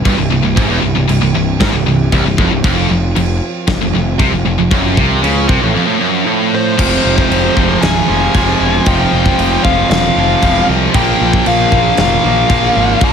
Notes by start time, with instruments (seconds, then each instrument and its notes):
Already playing: pipe organ C3 E3 G3 E4 G4
0.05 picked electric bass G1, distorted electric guitar G2, kick, crash
0.18 picked electric bass C1, distorted electric guitar C2
0.30 picked electric bass C1, distorted electric guitar C2
0.43 picked electric bass C1, distorted electric guitar C2
0.56 picked electric bass G#1, distorted electric guitar G#2, kick, crash
0.69 picked electric bass E1, distorted electric guitar E2
0.82 picked electric bass C1, distorted electric guitar C2
0.95 picked electric bass C1, distorted electric guitar C2
1.08 picked electric bass C1, distorted electric guitar C2, crash
1.21 picked electric bass C1, distorted electric guitar C2
1.35 picked electric bass C1, distorted electric guitar C2
1.60 picked electric bass G#1, distorted electric guitar G#2, kick, snare, crash
1.72 picked electric bass C1, distorted electric guitar C2
1.86 picked electric bass C1, distorted electric guitar C2
2.12 picked electric bass C1, distorted electric guitar C2, kick, crash
2.25 picked electric bass C1, distorted electric guitar C2
2.38 picked electric bass F1, distorted electric guitar F2, kick
2.51 picked electric bass C1, distorted electric guitar C2
2.63 picked electric bass F1, distorted electric guitar F2, pipe organ F3 C4 F4, kick, crash
2.89 picked electric bass F1, distorted electric guitar F2
3.16 picked electric bass F1, distorted electric guitar F2, crash
3.67 picked electric bass F1, distorted electric guitar F2, kick, snare, crash
3.81 picked electric bass F1, distorted electric guitar F2
3.94 picked electric bass F1, distorted electric guitar F2
4.19 picked electric bass C2, distorted electric guitar C3, kick, crash
4.32 picked electric bass F1, distorted electric guitar F2
4.45 picked electric bass F1, distorted electric guitar F2
4.58 picked electric bass F1, distorted electric guitar F2
4.71 picked electric bass F#1, distorted electric guitar F#2, kick, crash
4.97 picked electric bass C2, distorted electric guitar C3, kick
5.23 picked electric bass C#2, distorted electric guitar C#3, crash
5.49 picked electric bass C2, distorted electric guitar C3, kick
5.62 picked electric bass A1, distorted electric guitar A2
5.75 distorted electric guitar F2
5.88 distorted electric guitar A2
6.01 distorted electric guitar F#2
6.27 distorted electric guitar A2
6.55 lead electric guitar C5
6.77 picked electric bass F1, distorted electric guitar F2 C3 F3, pipe organ C3 F3 G#3 F4 G#4, kick, crash
7.05 picked electric bass F1
7.18 kick
7.30 picked electric bass F1, crash
7.55 picked electric bass F1, distorted electric guitar F2 C3 F3, kick
7.81 picked electric bass C1, lead electric guitar G#5, snare, crash
8.08 picked electric bass F1, distorted electric guitar F2 C3 F3
8.33 picked electric bass F1, distorted electric guitar F2 C3 F3, kick, crash
8.60 picked electric bass E1
8.85 picked electric bass F1, distorted electric guitar F2 C3 F3, pipe organ F4, lead electric guitar G5, kick, crash
9.13 picked electric bass F1
9.26 kick
9.38 picked electric bass F1, crash
9.63 picked electric bass F1, distorted electric guitar F2 C3 F3, lead electric guitar F5, kick
9.90 picked electric bass E1, lead electric guitar F5, snare, crash
10.16 picked electric bass F1, distorted electric guitar F2 C3 F3
10.41 picked electric bass E1, distorted electric guitar F2 C3 F3, kick, crash
10.69 picked electric bass C2
10.92 picked electric bass A#1, distorted electric guitar A#2 F3 A#3, pipe organ C#3 A#3 F4 A#4, lead electric guitar G5, kick, crash
11.21 picked electric bass A#1
11.33 kick
11.46 picked electric bass A#1, lead electric guitar F5, crash
11.70 picked electric bass A#1, distorted electric guitar A#2 F3 A#3, kick
11.97 picked electric bass F1, lead electric guitar F5, snare, crash
12.24 picked electric bass A#1, distorted electric guitar A#2 F3 A#3
12.48 picked electric bass A#1, distorted electric guitar A#2 F3 A#3, kick, crash
12.76 picked electric bass G#1
13.00 picked electric bass A#1, distorted electric guitar A#2 F3 A#3, pipe organ E4, kick, crash
13.04 lead electric guitar A#5